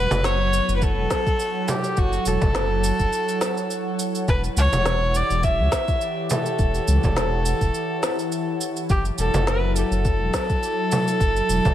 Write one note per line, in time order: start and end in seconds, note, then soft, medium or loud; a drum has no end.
0.00 4.28 F#3 medium
0.00 0.75 B3 medium
0.00 0.26 B4 loud
0.00 11.74 C#5 medium
0.00 11.74 F#5 medium
0.06 11.74 E4 medium
0.11 0.61 F#1 medium
0.11 frame drum medium
0.11 cabasa soft
0.24 6.14 A4 medium
0.24 0.75 C#5 loud
0.24 snare medium
0.24 cabasa soft
0.53 cabasa medium
0.68 0.99 F#1 medium
0.68 cabasa soft
0.76 0.84 B4 medium
0.82 1.71 A4 loud
0.82 kick loud
0.82 cabasa soft
0.97 1.06 E1 medium
1.11 kick medium
1.11 snare medium
1.11 cabasa medium
1.27 kick loud
1.27 cabasa soft
1.39 cabasa soft
1.68 1.99 G4 medium
1.68 frame drum loud
1.68 cabasa medium
1.84 cabasa soft
1.97 2.18 F#1 medium
1.97 2.29 F#4 loud
1.97 kick loud
1.97 cabasa soft
2.13 cabasa soft
2.26 2.37 E1 medium
2.26 4.00 A4 medium
2.26 cabasa medium
2.41 2.92 F#1 medium
2.41 kick loud
2.41 frame drum medium
2.41 cabasa soft
2.55 snare medium
2.55 cabasa soft
2.84 cabasa medium
3.00 3.09 F#1 medium
3.00 kick medium
3.00 cabasa soft
3.13 cabasa soft
3.28 cabasa soft
3.41 snare medium
3.41 cabasa medium
3.57 cabasa soft
3.70 cabasa soft
3.99 cabasa medium
4.15 cabasa soft
4.28 4.49 E1 medium
4.28 8.90 E3 medium
4.28 4.41 B4 medium
4.28 kick loud
4.28 cabasa soft
4.44 cabasa soft
4.57 4.68 C#2 loud
4.57 5.17 C#5 loud
4.57 cabasa medium
4.67 8.89 G4 medium
4.72 5.22 E1 medium
4.72 frame drum medium
4.72 cabasa soft
4.86 snare medium
4.86 cabasa soft
5.15 5.46 D5 medium
5.15 cabasa medium
5.30 5.60 E1 medium
5.30 cabasa soft
5.43 6.33 E5 loud
5.43 kick medium
5.43 cabasa soft
5.59 5.68 C#2 medium
5.72 kick medium
5.72 snare medium
5.72 cabasa medium
5.88 kick loud
5.88 cabasa soft
6.01 cabasa soft
6.30 8.61 A4 medium
6.30 frame drum medium
6.30 cabasa medium
6.46 cabasa soft
6.59 6.79 E1 medium
6.59 kick loud
6.59 cabasa soft
6.74 cabasa soft
6.88 6.98 C#2 loud
6.88 cabasa medium
7.03 7.53 E1 medium
7.03 kick medium
7.03 frame drum medium
7.03 cabasa soft
7.17 snare medium
7.17 cabasa soft
7.46 cabasa medium
7.61 7.70 E1 medium
7.61 kick medium
7.61 cabasa soft
7.74 cabasa soft
8.03 snare medium
8.03 cabasa medium
8.19 cabasa soft
8.32 cabasa soft
8.61 cabasa medium
8.76 cabasa soft
8.89 9.10 F#1 medium
8.89 11.74 F#3 medium
8.89 9.03 G4 medium
8.89 kick loud
8.89 cabasa soft
9.05 cabasa soft
9.18 9.29 E1 loud
9.18 9.50 A4 medium
9.18 cabasa medium
9.34 9.84 F#1 medium
9.34 frame drum medium
9.34 cabasa soft
9.47 9.76 B4 medium
9.47 snare medium
9.47 cabasa soft
9.61 11.74 A4 medium
9.76 11.74 A4 medium
9.76 cabasa medium
9.91 10.22 F#1 medium
9.91 cabasa soft
10.05 kick medium
10.05 cabasa soft
10.20 10.30 E1 medium
10.34 kick medium
10.34 snare medium
10.34 cabasa medium
10.50 kick medium
10.50 cabasa soft
10.63 cabasa soft
10.92 frame drum medium
10.92 cabasa medium
11.08 cabasa soft
11.21 11.41 F#1 medium
11.21 kick loud
11.21 cabasa soft
11.36 cabasa soft
11.49 11.60 E1 loud
11.49 cabasa medium
11.65 11.74 F#1 medium
11.65 kick medium
11.65 frame drum medium
11.65 cabasa soft